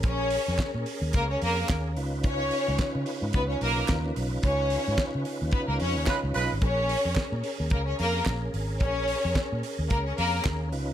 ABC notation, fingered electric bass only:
X:1
M:4/4
L:1/16
Q:"Swing 16ths" 1/4=110
K:A#phr
V:1 name="Fingered electric bass" clef=bass
A,,,3 E,, z A,, z D,, C,,2 E,,2 D,,2 C,,2- | C,,3 C,, z C, z G,, C,,2 B,,,2 D,,2 B,,,2 | C,,3 G,, z C, z D,, z C,, E,, D,, z C,, B,,, G,,, | A,,,3 E,, z A,, z D,, C,,2 E,,2 A,,,2 G,,,2 |
A,,,3 E,, z A,, z D,, C,,2 E,,2 D,,2 C,,2 |]